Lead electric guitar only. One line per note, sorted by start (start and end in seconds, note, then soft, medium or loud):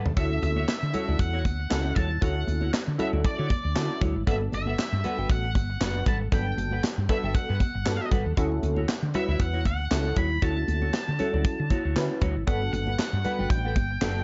0.17 0.42 E5 medium
0.43 1.22 E5 medium
1.20 1.92 F#5 loud
1.96 2.20 A5 loud
2.22 2.70 F#5 medium
3.00 3.07 E5 loud
3.26 3.98 D5 loud
4.29 4.35 E5 loud
4.54 5.26 E5 medium
5.31 6.03 F#5 loud
6.08 6.15 A5 loud
6.34 6.81 G5 loud
7.10 7.33 E5 loud
7.35 8.08 F#5 loud
9.16 9.41 E5 medium
9.41 9.66 F#5 loud
9.67 10.14 F#5 loud
10.18 10.44 B5 loud
10.43 12.18 A5 loud
12.48 12.71 F#5 loud
12.73 13.50 F#5 loud
13.50 14.24 G5 loud